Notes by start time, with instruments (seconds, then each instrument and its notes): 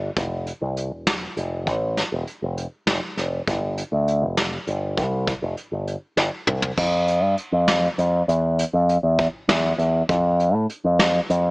0.17 picked electric bass F1, kick, closed hi-hat
0.47 closed hi-hat
0.62 picked electric bass C2
0.77 closed hi-hat
0.92 picked electric bass E1
1.07 snare, closed hi-hat
1.37 picked electric bass F1, closed hi-hat
1.67 picked electric bass A1, kick, closed hi-hat
1.97 snare, closed hi-hat
2.12 picked electric bass E1
2.27 closed hi-hat
2.42 picked electric bass F1
2.57 closed hi-hat
2.87 picked electric bass F1, snare, closed hi-hat
3.17 picked electric bass F1, snare, closed hi-hat
3.47 picked electric bass G1, kick, closed hi-hat
3.78 closed hi-hat
3.92 picked electric bass D2
4.08 closed hi-hat
4.22 picked electric bass F1
4.37 snare, closed hi-hat
4.67 picked electric bass G1, closed hi-hat
4.97 picked electric bass C2, kick, closed hi-hat
5.27 kick, snare, closed hi-hat
5.42 picked electric bass F1
5.57 closed hi-hat
5.72 picked electric bass G1
5.87 closed hi-hat
6.17 picked electric bass G1, snare
6.47 picked electric bass C2, mid tom
6.62 floor tom
6.78 picked electric bass F2, kick, crash
7.08 closed hi-hat
7.23 picked electric bass G2
7.38 closed hi-hat
7.52 picked electric bass F2
7.68 snare, closed hi-hat
7.98 picked electric bass F2, closed hi-hat
8.28 picked electric bass E2, closed hi-hat
8.59 closed hi-hat
8.73 picked electric bass F2
8.89 closed hi-hat
9.03 picked electric bass E2
9.19 kick, closed hi-hat
9.48 picked electric bass E2, snare, closed hi-hat
9.78 picked electric bass E2, closed hi-hat
10.09 picked electric bass F2, kick, closed hi-hat
10.40 closed hi-hat
10.54 picked electric bass A2
10.70 closed hi-hat
10.84 picked electric bass F2
10.99 snare, closed hi-hat
11.30 picked electric bass F2, closed hi-hat